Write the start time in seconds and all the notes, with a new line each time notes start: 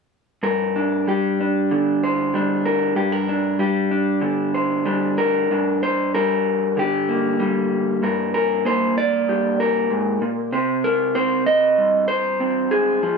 0.43 G2 A#4
0.76 D4
1.08 G3 G4
1.41 D4
1.71 D3
2.04 C5
2.34 G3 D4
2.66 A#4
2.96 G2 G4
3.12 A#4
3.29 D4
3.59 G3 G4
3.91 D4
4.21 D3
4.54 C5
4.86 G3 D4
5.18 A#4
5.51 G2 D4
5.83 C5
6.14 G3 A#4
6.77 D3 G4
7.09 A#3
7.40 G3
8.03 G2 A#4
8.34 A#4
8.65 A#3 C5
8.98 D5
9.28 G2 G4
9.60 A#4
9.90 G#2
10.22 A#2
10.53 C3 C5
10.84 A#4
11.15 C4 C5
11.46 D#5
11.78 G2
12.08 C5
12.40 C4
12.71 G#4
13.03 F3